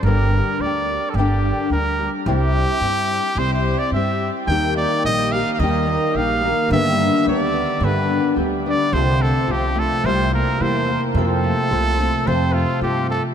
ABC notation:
X:1
M:2/4
L:1/16
Q:1/4=108
K:F
V:1 name="Trumpet"
B4 d3- d/2 A/2 | G4 B3 z | G8 | c c2 d e3 z |
g2 d2 _e2 f3/2 f/2 | _e4 f4 | e4 d4 | =B4 z2 d2 |
c2 A2 G2 A2 | c2 B2 c3 z | A8 | c2 F2 G2 A2 |]
V:2 name="Nylon-string guitar"
[G,,D,G,B,DG]4 [G,B,DG]4 | [G,,D,G,B,DG]4 [G,B,DG]2 [G,B,DG]2 | [C,G,CEG]4 [G,CEG]4 | [C,G,CEG]4 [G,CEG]4 |
[_E,G,B,_EG]4 [G,B,EG]2 [B,EG]2 | [_E,G,B,_EG]4 [G,B,EG]2 [B,EG]2 | [G,,D,G,=B,DG]4 [G,B,DG]4 | [G,,D,G,=B,DG]4 [G,B,DG]2 [G,B,DG]2 |
[C,F,CFA]4 [F,CFA]4 | [C,G,B,EB]4 [G,B,EB]2 [B,EB]2 | [F,CFA]4 [F,CFA]2 [CFA]2 | [F,CFA]4 [F,CFA]4 |]
V:3 name="Harp"
z8 | z8 | z8 | z8 |
_E,2 B,2 G2 B,2 | _E,2 B,2 G2 B,2 | D,2 =B,2 G2 B,2 | D,2 =B,2 G2 B,2 |
C,2 A,2 F2 A,2 | C,2 B,2 E2 B,2 | C,2 A,2 F2 A,2 | C,2 A,2 F2 A,2 |]
V:4 name="Upright bass" clef=bass
G,,,4 D,,4 | G,,,4 D,,4 | C,,4 G,,4 | C,,4 G,,4 |
_E,,4 B,,,4 | _E,,4 B,,,4 | G,,4 D,,4 | G,,4 D,,4 |
C,,4 C,,4 | C,,4 E,,4 | F,,4 C,,4 | F,,4 G,,4 |]